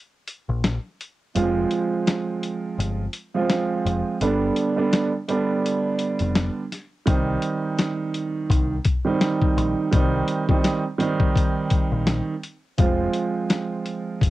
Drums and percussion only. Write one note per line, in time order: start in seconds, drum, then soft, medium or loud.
0.28 closed hi-hat medium
0.64 snare loud
0.64 snare medium
0.64 closed hi-hat medium
1.01 closed hi-hat medium
1.35 closed hi-hat loud
1.71 closed hi-hat medium
2.07 snare loud
2.07 closed hi-hat loud
2.43 closed hi-hat medium
2.80 closed hi-hat loud
3.13 closed hi-hat medium
3.50 snare loud
3.50 closed hi-hat medium
3.87 closed hi-hat medium
4.21 closed hi-hat medium
4.56 closed hi-hat medium
4.93 snare loud
4.93 closed hi-hat loud
5.29 closed hi-hat medium
5.66 closed hi-hat medium
5.99 closed hi-hat medium
6.19 closed hi-hat medium
6.35 snare loud
6.35 closed hi-hat medium
6.72 snare soft
6.72 closed hi-hat medium
7.07 kick loud
7.07 closed hi-hat medium
7.42 closed hi-hat medium
7.79 snare loud
7.79 closed hi-hat loud
8.14 closed hi-hat medium
8.50 kick loud
8.50 closed hi-hat medium
8.85 kick medium
8.85 closed hi-hat medium
9.21 snare loud
9.21 closed hi-hat medium
9.42 kick medium
9.58 closed hi-hat medium
9.93 kick loud
9.93 closed hi-hat loud
10.28 closed hi-hat medium
10.49 kick loud
10.64 snare loud
10.64 closed hi-hat loud
11.00 closed hi-hat medium
11.20 kick medium
11.36 kick medium
11.36 closed hi-hat medium
11.70 kick loud
11.70 closed hi-hat medium
12.07 snare loud
12.07 closed hi-hat medium
12.43 closed hi-hat medium
12.78 kick loud
12.78 closed hi-hat medium
13.13 closed hi-hat medium
13.50 snare loud
13.50 closed hi-hat loud
13.86 closed hi-hat medium
14.21 kick medium
14.21 closed hi-hat medium